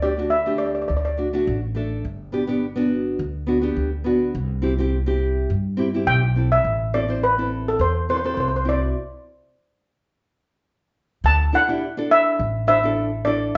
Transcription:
Already playing: upright bass D2
0.02 nylon-string guitar A3 D4 G4, steel pan D5
0.17 nylon-string guitar A3 D4 F#4
0.30 steel pan E5
0.46 nylon-string guitar A3 D4 G4
0.58 steel pan D5
0.66 steel pan D5
0.75 steel pan D5
0.82 steel pan D5
0.88 upright bass D2, steel pan D5
0.97 steel pan D5
1.05 steel pan D5
1.17 nylon-string guitar A3 D4 F#4
1.33 nylon-string guitar A3 D4 F#4
1.47 upright bass A1
1.75 nylon-string guitar A3 D4 A4
2.05 upright bass G1
2.32 nylon-string guitar B3 D4 G4
2.47 nylon-string guitar B3 D4 G4
2.76 nylon-string guitar B3 D4 F#4
3.19 upright bass D2
3.47 nylon-string guitar B3 D4 F#4
3.62 nylon-string guitar B3 D4 G4
3.76 upright bass D2
4.04 nylon-string guitar B3 D4 F#4
4.35 upright bass C2
4.62 nylon-string guitar C4 E4 G4
4.78 nylon-string guitar C4 E4 G4
5.06 nylon-string guitar C4 E4 G4
5.50 upright bass G2
5.77 nylon-string guitar C4 E4 G4
5.94 nylon-string guitar C4 E4 G4
6.07 upright bass B1, steel pan G5
6.36 nylon-string guitar C4 E4 A4
6.52 steel pan E5
6.64 upright bass A1
6.94 nylon-string guitar C4 E4 A4, steel pan D5
7.08 nylon-string guitar C4 E4 C5
7.24 steel pan B4
7.38 nylon-string guitar C4 E4 A4
7.68 steel pan A4
7.79 upright bass E2, steel pan C5
8.09 nylon-string guitar C4 E4 A4, steel pan C5
8.17 steel pan C5
8.24 nylon-string guitar C4 E4 A4, steel pan C5
8.34 upright bass C2, steel pan C5
8.40 steel pan C5
8.48 steel pan C5
8.56 steel pan C5
8.65 nylon-string guitar C4 E4 F#4
8.69 steel pan D5
11.24 upright bass D2, steel pan A5
11.53 nylon-string guitar D4 E4 A4, steel pan F#5
11.68 nylon-string guitar D4 E4 G4
11.97 nylon-string guitar D4 E4 A4
12.11 steel pan E5
12.39 upright bass A1
12.67 nylon-string guitar D4 E4 C5, steel pan E5
12.83 nylon-string guitar D4 E4 A4
13.25 nylon-string guitar D4 E4 A4, steel pan D5

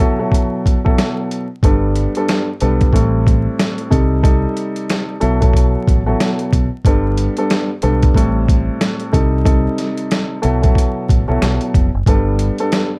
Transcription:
0.00 upright piano B2 F#3 E4 A4
0.19 upright piano B2 F#3 E4 A4
0.32 kick, closed hi-hat
0.66 kick, closed hi-hat
0.85 upright piano B2 F#3 E4 A4, kick
0.98 snare, closed hi-hat
1.31 closed hi-hat
1.63 fingered electric bass G1, upright piano G2 G3 B3 A4, kick, closed hi-hat
1.96 closed hi-hat
2.15 upright piano G2 G3 B3 A4, closed hi-hat
2.29 snare, closed hi-hat
2.60 fingered electric bass B1, upright piano G2 G3 B3 A4, closed hi-hat
2.81 kick, closed hi-hat
2.93 fingered electric bass A1, upright piano A2 G3 C4 A4, kick, closed hi-hat
3.27 kick, closed hi-hat
3.60 snare, closed hi-hat
3.78 closed hi-hat
3.90 fingered electric bass C2, upright piano C3 G3 D#4 A4, kick, closed hi-hat
4.23 upright piano C3 G3 D#4 A4, kick, closed hi-hat
4.57 closed hi-hat
4.76 closed hi-hat
4.89 snare, closed hi-hat
5.20 fingered electric bass B1, upright piano B2 F#3 E4 A4, closed hi-hat
5.41 upright piano B2 F#3 E4 A4, kick, closed hi-hat
5.54 kick, closed hi-hat
5.88 fingered electric bass A1, kick, closed hi-hat
6.06 upright piano B2 F#3 E4 A4
6.20 snare, closed hi-hat
6.39 closed hi-hat
6.53 fingered electric bass B1, kick, closed hi-hat
6.85 fingered electric bass G1, upright piano G2 G3 B3 A4, kick, closed hi-hat
7.18 closed hi-hat
7.37 upright piano G2 G3 B3 A4, closed hi-hat
7.50 snare, closed hi-hat
7.82 fingered electric bass B1, upright piano G2 G3 B3 A4, closed hi-hat
8.02 kick, closed hi-hat
8.14 fingered electric bass A1, upright piano A2 G3 C4 A4, kick, closed hi-hat
8.48 kick, closed hi-hat
8.81 snare, closed hi-hat
9.00 closed hi-hat
9.12 fingered electric bass C2, upright piano C3 G3 D#4 A4, kick, closed hi-hat
9.45 upright piano C3 G3 D#4 A4, kick, closed hi-hat
9.78 snare, closed hi-hat
9.97 closed hi-hat
10.11 snare, closed hi-hat
10.42 fingered electric bass B1, upright piano B2 F#3 E4 A4, closed hi-hat
10.62 upright piano B2 F#3 E4 A4, kick, closed hi-hat
10.75 kick, closed hi-hat
11.09 fingered electric bass A1, kick, closed hi-hat
11.28 fingered electric bass B1, upright piano B2 F#3 E4 A4
11.42 fingered electric bass B1, snare, closed hi-hat
11.61 closed hi-hat
11.74 fingered electric bass F1, kick, closed hi-hat
11.94 fingered electric bass F#1
12.06 fingered electric bass G1, upright piano G2 G3 B3 A4, kick, closed hi-hat
12.39 closed hi-hat
12.58 upright piano G2 G3 B3 A4, closed hi-hat
12.72 snare, closed hi-hat

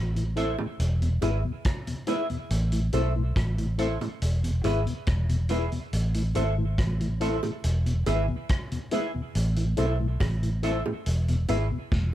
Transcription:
Already playing: fingered electric bass A1
0.16 tonewheel organ A2 E3, closed hi-hat
0.36 tonewheel organ A3 C4 E4, reed electric piano E4 A4 C5 E5, clean electric guitar E4 A4 C5 E5, closed hi-hat
0.59 tonewheel organ A2 E3, high bongo
0.80 fingered electric bass E1, closed hi-hat
1.02 tonewheel organ E2 B2, closed hi-hat
1.21 fingered electric bass G#1, tonewheel organ G#3 B3 E4, reed electric piano E4 G#4 B4 E5, clean electric guitar E4 G#4 B4 E5, closed hi-hat, high bongo
1.45 tonewheel organ E2 B2
1.65 kick, cross-stick, closed hi-hat
1.87 tonewheel organ E2 B2, closed hi-hat
2.07 tonewheel organ G#3 B3 E4, reed electric piano E4 G#4 B4 E5, clean electric guitar E4 G#4 B4 E5, closed hi-hat, low bongo
2.30 tonewheel organ E2 B2, closed hi-hat
2.50 fingered electric bass A1, closed hi-hat
2.72 tonewheel organ A2 E3, closed hi-hat
2.93 fingered electric bass B1, tonewheel organ A3 C4 E4, reed electric piano E4 A4 C5 E5, clean electric guitar E4 A4 C5 E5, closed hi-hat, high bongo
3.16 tonewheel organ A2 E3
3.36 fingered electric bass A1, kick, cross-stick, closed hi-hat
3.58 tonewheel organ A2 E3, closed hi-hat
3.78 tonewheel organ A3 C4 E4, reed electric piano E4 A4 C5 E5, clean electric guitar E4 A4 C5 E5, closed hi-hat
4.01 tonewheel organ A2 E3, closed hi-hat, high bongo
4.22 fingered electric bass E1, closed hi-hat
4.43 tonewheel organ E2 B2, closed hi-hat
4.64 fingered electric bass G#1, tonewheel organ G#3 B3 E4, reed electric piano E4 G#4 B4 E5, clean electric guitar E4 G#4 B4 E5, closed hi-hat, high bongo
4.86 tonewheel organ E2 B2, closed hi-hat
5.07 fingered electric bass E1, kick, cross-stick, closed hi-hat
5.29 tonewheel organ E2 B2, closed hi-hat
5.49 tonewheel organ G#3 B3 E4, reed electric piano E4 G#4 B4 E5, clean electric guitar E4 G#4 B4 E5, closed hi-hat, low bongo
5.72 tonewheel organ E2 B2, closed hi-hat
5.93 fingered electric bass A1, closed hi-hat
6.14 tonewheel organ A2 E3, closed hi-hat
6.35 fingered electric bass G#1, tonewheel organ A3 C4 E4, reed electric piano E4 A4 C5 E5, clean electric guitar E4 A4 C5 E5, closed hi-hat, high bongo
6.58 tonewheel organ A2 E3
6.78 fingered electric bass A1, kick, cross-stick, closed hi-hat
7.01 tonewheel organ A2 E3, closed hi-hat
7.20 tonewheel organ A3 C4 E4, reed electric piano E4 A4 C5 E5, clean electric guitar E4 A4 C5 E5, closed hi-hat
7.43 tonewheel organ A2 E3, closed hi-hat, high bongo
7.64 fingered electric bass E1, closed hi-hat
7.86 tonewheel organ E2 B2, closed hi-hat
8.06 fingered electric bass G#1, tonewheel organ G#3 B3 E4, reed electric piano E4 G#4 B4 E5, clean electric guitar E4 G#4 B4 E5, closed hi-hat, high bongo
8.28 tonewheel organ E2 B2
8.49 kick, cross-stick, closed hi-hat
8.72 tonewheel organ E2 B2, closed hi-hat
8.91 tonewheel organ G#3 B3 E4, reed electric piano E4 G#4 B4 E5, clean electric guitar E4 G#4 B4 E5, closed hi-hat, low bongo
9.14 tonewheel organ E2 B2
9.35 fingered electric bass A1, closed hi-hat
9.56 tonewheel organ A2 E3, closed hi-hat
9.77 fingered electric bass B1, tonewheel organ A3 C4 E4, reed electric piano E4 A4 C5 E5, clean electric guitar E4 A4 C5 E5, closed hi-hat, high bongo
10.00 tonewheel organ A2 E3
10.20 fingered electric bass A1, kick, cross-stick, closed hi-hat, high bongo
10.43 tonewheel organ A2 E3, closed hi-hat
10.63 tonewheel organ A3 C4 E4, reed electric piano E4 A4 C5 E5, clean electric guitar E4 A4 C5 E5, closed hi-hat
10.86 tonewheel organ A2 E3, high bongo
11.06 fingered electric bass E1, closed hi-hat
11.28 tonewheel organ E2 B2, closed hi-hat
11.48 fingered electric bass G#1, tonewheel organ G#3 B3 E4, reed electric piano E4 G#4 B4 E5, clean electric guitar E4 G#4 B4 E5, closed hi-hat, high bongo
11.71 tonewheel organ E2 B2
11.92 fingered electric bass E1, kick, snare

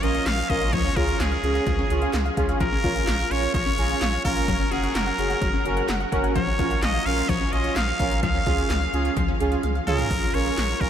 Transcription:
0.03 analog synth bass A#1, analog polysynth C#4 F4 A#4, muted trumpet D#5, closed hi-hat
0.14 synth pluck F5, closed hi-hat
0.26 analog synth bass A#1, synth pluck F5, muted trumpet F5, snare, clap, closed hi-hat
0.38 synth pluck F5
0.49 analog synth bass A#1, analog polysynth C#4 F4 A#4, muted trumpet D#5, synth pluck F5, kick, closed hi-hat
0.61 synth pluck F5, closed hi-hat
0.73 analog synth bass C#2, synth pluck F3, muted trumpet C#5, kick, closed hi-hat
0.85 synth pluck C#4
0.96 analog synth bass C#2, analog polysynth C#4 F4 G#4, synth pluck F4, muted trumpet A#4, kick, closed hi-hat
1.08 synth pluck F5, closed hi-hat
1.20 analog synth bass C#2, muted trumpet G#4, synth pluck F5, snare, clap, closed hi-hat
1.32 synth pluck F5
1.43 analog synth bass C#2, analog polysynth C#4 F4 G#4, closed hi-hat
1.55 synth pluck F5, closed hi-hat
1.67 analog synth bass C#2, synth pluck F3, kick, closed hi-hat
1.79 synth pluck C#4
1.90 analog synth bass C#2, analog polysynth C#4 F4 G#4, closed hi-hat
2.02 synth pluck F5, closed hi-hat
2.13 analog synth bass C#2, synth pluck F5, snare, clap, closed hi-hat
2.25 synth pluck F5
2.37 analog synth bass C#2, analog polysynth C#4 F4 G#4, synth pluck F5, kick, closed hi-hat
2.49 synth pluck F5, closed hi-hat
2.60 analog synth bass A#1, synth pluck F3, muted trumpet A#4, kick, closed hi-hat
2.72 synth pluck C#4
2.84 analog synth bass A#1, analog polysynth C#4 F4 A#4, synth pluck F4, kick, closed hi-hat
2.96 synth pluck F5, closed hi-hat
3.07 analog synth bass A#1, synth pluck F5, snare, clap, closed hi-hat
3.19 synth pluck F5
3.31 analog synth bass A#1, analog polysynth C#4 F4 C#5, muted trumpet C#5, closed hi-hat
3.43 synth pluck F5, closed hi-hat
3.54 analog synth bass A#1, synth pluck F3, muted trumpet C#5, kick, closed hi-hat
3.66 synth pluck C#4
3.78 analog synth bass A#1, analog polysynth C#4 F4 G#4, closed hi-hat
3.89 synth pluck F5, closed hi-hat
4.01 analog synth bass A#1, synth pluck F5, snare, clap, closed hi-hat
4.13 synth pluck F5
4.24 analog synth bass A#1, analog polysynth C#4 F4 A#4, muted trumpet A#4, synth pluck F5, kick, closed hi-hat
4.36 synth pluck F5, closed hi-hat
4.48 analog synth bass F#1, synth pluck F#3, kick, closed hi-hat
4.60 synth pluck C#4
4.71 analog synth bass F#1, analog polysynth C#4 F#4 A#4, synth pluck F#4, muted trumpet G#4, closed hi-hat
4.83 synth pluck F#5, closed hi-hat
4.95 analog synth bass F#1, muted trumpet A#4, synth pluck F#5, snare, clap, closed hi-hat
5.07 synth pluck F#5
5.18 analog synth bass F#1, analog polysynth C#4 F#4 G#4, closed hi-hat
5.30 synth pluck F#5, closed hi-hat
5.42 analog synth bass F#1, synth pluck F#3, kick, closed hi-hat
5.53 synth pluck C#4
5.65 analog synth bass F#1, analog polysynth C#4 F#4 A#4, closed hi-hat
5.77 synth pluck F#5, closed hi-hat
5.88 analog synth bass F#1, synth pluck F#5, snare, clap, closed hi-hat
6.00 synth pluck F#5
6.12 analog synth bass F#1, analog polysynth C#4 F#4 A#4, synth pluck F#5, kick, closed hi-hat
6.24 synth pluck F#5, closed hi-hat
6.35 analog synth bass A#1, synth pluck F3, muted trumpet C#5, kick, closed hi-hat
6.47 synth pluck C#4
6.59 analog synth bass A#1, analog polysynth C#4 F4 A#4, synth pluck F4, kick, closed hi-hat
6.71 synth pluck F5, closed hi-hat
6.82 analog synth bass A#1, muted trumpet D#5, synth pluck F5, snare, clap, closed hi-hat
6.94 synth pluck F5
7.06 analog synth bass A#1, analog polysynth C#4 F4 A#4, muted trumpet F5, closed hi-hat
7.17 synth pluck F5, closed hi-hat
7.29 analog synth bass A#1, synth pluck F3, muted trumpet C#5, kick, closed hi-hat
7.41 synth pluck C#4
7.52 analog synth bass A#1, analog polysynth C#4 F4 C#5, muted trumpet D#5, closed hi-hat
7.64 synth pluck F5, closed hi-hat
7.76 analog synth bass A#1, muted trumpet F5, synth pluck F5, snare, clap, closed hi-hat
7.88 synth pluck F5
7.99 analog synth bass A#1, analog polysynth C#4 F4 A#4, synth pluck F5, kick, closed hi-hat
8.11 synth pluck F5, closed hi-hat
8.23 analog synth bass C#2, synth pluck F3, muted trumpet F5, kick, closed hi-hat
8.35 synth pluck C#4
8.46 analog synth bass C#2, analog polysynth C#4 F4 G#4, synth pluck F4, kick, closed hi-hat
8.58 synth pluck F5, closed hi-hat
8.70 analog synth bass C#2, synth pluck F5, snare, clap, closed hi-hat
8.82 synth pluck F5
8.93 analog synth bass C#2, analog polysynth C#4 F4 G#4, closed hi-hat
9.05 synth pluck F5, closed hi-hat
9.17 analog synth bass C#2, synth pluck F3, kick, closed hi-hat
9.28 synth pluck C#4
9.40 analog synth bass C#2, analog polysynth C#4 F4 G#4, closed hi-hat
9.52 synth pluck F5, closed hi-hat
9.63 analog synth bass C#2, synth pluck F5, closed hi-hat, high tom
9.75 synth pluck F5
9.87 analog synth bass C#2, analog polysynth C#4 F4 G#4, muted trumpet A#4, synth pluck F5, closed hi-hat, mid tom
9.99 synth pluck F5, closed hi-hat, floor tom
10.11 analog synth bass A#1, kick, closed hi-hat, crash
10.34 analog synth bass A#1, analog polysynth C#4 F4 A#4, muted trumpet C#5, closed hi-hat
10.46 closed hi-hat
10.58 analog synth bass A#1, snare, clap, closed hi-hat
10.81 analog synth bass A#1, analog polysynth C#4 F4 A#4, muted trumpet A#4, kick, closed hi-hat

